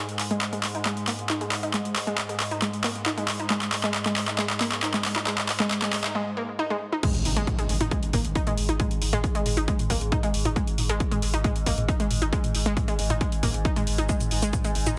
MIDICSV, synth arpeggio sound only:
0, 0, Header, 1, 2, 480
1, 0, Start_track
1, 0, Tempo, 441176
1, 1891, Time_signature, 4, 2, 24, 8
1, 16303, End_track
2, 0, Start_track
2, 0, Title_t, "Synth arpeggio sound"
2, 0, Program_c, 0, 84
2, 333, Note_on_c, 0, 56, 100
2, 399, Note_off_c, 0, 56, 0
2, 573, Note_on_c, 0, 56, 78
2, 638, Note_off_c, 0, 56, 0
2, 813, Note_on_c, 0, 63, 76
2, 840, Note_off_c, 0, 63, 0
2, 930, Note_on_c, 0, 56, 87
2, 999, Note_off_c, 0, 56, 0
2, 1170, Note_on_c, 0, 58, 77
2, 1198, Note_off_c, 0, 58, 0
2, 1410, Note_on_c, 0, 63, 85
2, 1479, Note_off_c, 0, 63, 0
2, 1533, Note_on_c, 0, 56, 77
2, 1599, Note_off_c, 0, 56, 0
2, 1774, Note_on_c, 0, 63, 73
2, 1800, Note_off_c, 0, 63, 0
2, 1890, Note_on_c, 0, 56, 81
2, 1959, Note_off_c, 0, 56, 0
2, 2253, Note_on_c, 0, 56, 102
2, 2319, Note_off_c, 0, 56, 0
2, 2493, Note_on_c, 0, 56, 76
2, 2559, Note_off_c, 0, 56, 0
2, 2733, Note_on_c, 0, 63, 80
2, 2759, Note_off_c, 0, 63, 0
2, 2849, Note_on_c, 0, 56, 85
2, 2919, Note_off_c, 0, 56, 0
2, 3090, Note_on_c, 0, 58, 78
2, 3118, Note_off_c, 0, 58, 0
2, 3330, Note_on_c, 0, 63, 84
2, 3399, Note_off_c, 0, 63, 0
2, 3454, Note_on_c, 0, 56, 79
2, 3519, Note_off_c, 0, 56, 0
2, 3694, Note_on_c, 0, 63, 77
2, 3720, Note_off_c, 0, 63, 0
2, 3811, Note_on_c, 0, 56, 84
2, 3879, Note_off_c, 0, 56, 0
2, 4173, Note_on_c, 0, 56, 104
2, 4239, Note_off_c, 0, 56, 0
2, 4414, Note_on_c, 0, 56, 75
2, 4479, Note_off_c, 0, 56, 0
2, 4654, Note_on_c, 0, 63, 78
2, 4680, Note_off_c, 0, 63, 0
2, 4771, Note_on_c, 0, 56, 86
2, 4839, Note_off_c, 0, 56, 0
2, 5011, Note_on_c, 0, 58, 81
2, 5038, Note_off_c, 0, 58, 0
2, 5251, Note_on_c, 0, 63, 84
2, 5319, Note_off_c, 0, 63, 0
2, 5374, Note_on_c, 0, 56, 78
2, 5439, Note_off_c, 0, 56, 0
2, 5613, Note_on_c, 0, 63, 76
2, 5640, Note_off_c, 0, 63, 0
2, 5731, Note_on_c, 0, 56, 85
2, 5799, Note_off_c, 0, 56, 0
2, 6092, Note_on_c, 0, 56, 108
2, 6158, Note_off_c, 0, 56, 0
2, 6333, Note_on_c, 0, 56, 77
2, 6399, Note_off_c, 0, 56, 0
2, 6573, Note_on_c, 0, 63, 81
2, 6600, Note_off_c, 0, 63, 0
2, 6690, Note_on_c, 0, 56, 87
2, 6759, Note_off_c, 0, 56, 0
2, 6930, Note_on_c, 0, 58, 76
2, 6958, Note_off_c, 0, 58, 0
2, 7170, Note_on_c, 0, 63, 86
2, 7239, Note_off_c, 0, 63, 0
2, 7293, Note_on_c, 0, 56, 79
2, 7359, Note_off_c, 0, 56, 0
2, 7534, Note_on_c, 0, 63, 74
2, 7560, Note_off_c, 0, 63, 0
2, 7650, Note_on_c, 0, 56, 82
2, 7719, Note_off_c, 0, 56, 0
2, 8013, Note_on_c, 0, 56, 106
2, 8079, Note_off_c, 0, 56, 0
2, 8254, Note_on_c, 0, 56, 77
2, 8319, Note_off_c, 0, 56, 0
2, 8494, Note_on_c, 0, 63, 80
2, 8520, Note_off_c, 0, 63, 0
2, 8610, Note_on_c, 0, 56, 84
2, 8679, Note_off_c, 0, 56, 0
2, 8851, Note_on_c, 0, 58, 77
2, 8878, Note_off_c, 0, 58, 0
2, 9091, Note_on_c, 0, 63, 87
2, 9159, Note_off_c, 0, 63, 0
2, 9214, Note_on_c, 0, 56, 81
2, 9279, Note_off_c, 0, 56, 0
2, 9454, Note_on_c, 0, 63, 75
2, 9480, Note_off_c, 0, 63, 0
2, 9571, Note_on_c, 0, 56, 81
2, 9639, Note_off_c, 0, 56, 0
2, 9933, Note_on_c, 0, 56, 103
2, 9999, Note_off_c, 0, 56, 0
2, 10173, Note_on_c, 0, 56, 77
2, 10239, Note_off_c, 0, 56, 0
2, 10413, Note_on_c, 0, 63, 77
2, 10439, Note_off_c, 0, 63, 0
2, 10531, Note_on_c, 0, 56, 89
2, 10600, Note_off_c, 0, 56, 0
2, 10771, Note_on_c, 0, 58, 75
2, 10798, Note_off_c, 0, 58, 0
2, 11010, Note_on_c, 0, 63, 85
2, 11079, Note_off_c, 0, 63, 0
2, 11133, Note_on_c, 0, 56, 78
2, 11199, Note_off_c, 0, 56, 0
2, 11373, Note_on_c, 0, 63, 74
2, 11400, Note_off_c, 0, 63, 0
2, 11490, Note_on_c, 0, 56, 85
2, 11559, Note_off_c, 0, 56, 0
2, 11853, Note_on_c, 0, 56, 105
2, 11919, Note_off_c, 0, 56, 0
2, 12093, Note_on_c, 0, 56, 75
2, 12159, Note_off_c, 0, 56, 0
2, 12334, Note_on_c, 0, 63, 77
2, 12360, Note_off_c, 0, 63, 0
2, 12450, Note_on_c, 0, 56, 89
2, 12519, Note_off_c, 0, 56, 0
2, 12691, Note_on_c, 0, 58, 76
2, 12718, Note_off_c, 0, 58, 0
2, 12931, Note_on_c, 0, 63, 84
2, 13000, Note_off_c, 0, 63, 0
2, 13054, Note_on_c, 0, 56, 78
2, 13119, Note_off_c, 0, 56, 0
2, 13293, Note_on_c, 0, 63, 77
2, 13320, Note_off_c, 0, 63, 0
2, 13412, Note_on_c, 0, 56, 85
2, 13480, Note_off_c, 0, 56, 0
2, 13774, Note_on_c, 0, 56, 108
2, 13839, Note_off_c, 0, 56, 0
2, 14014, Note_on_c, 0, 56, 77
2, 14079, Note_off_c, 0, 56, 0
2, 14254, Note_on_c, 0, 63, 77
2, 14280, Note_off_c, 0, 63, 0
2, 14371, Note_on_c, 0, 56, 87
2, 14439, Note_off_c, 0, 56, 0
2, 14611, Note_on_c, 0, 58, 78
2, 14638, Note_off_c, 0, 58, 0
2, 14851, Note_on_c, 0, 63, 84
2, 14919, Note_off_c, 0, 63, 0
2, 14974, Note_on_c, 0, 56, 81
2, 15039, Note_off_c, 0, 56, 0
2, 15214, Note_on_c, 0, 63, 75
2, 15240, Note_off_c, 0, 63, 0
2, 15331, Note_on_c, 0, 56, 84
2, 15399, Note_off_c, 0, 56, 0
2, 15694, Note_on_c, 0, 56, 101
2, 15759, Note_off_c, 0, 56, 0
2, 15934, Note_on_c, 0, 56, 76
2, 15999, Note_off_c, 0, 56, 0
2, 16174, Note_on_c, 0, 63, 80
2, 16200, Note_off_c, 0, 63, 0
2, 16303, End_track
0, 0, End_of_file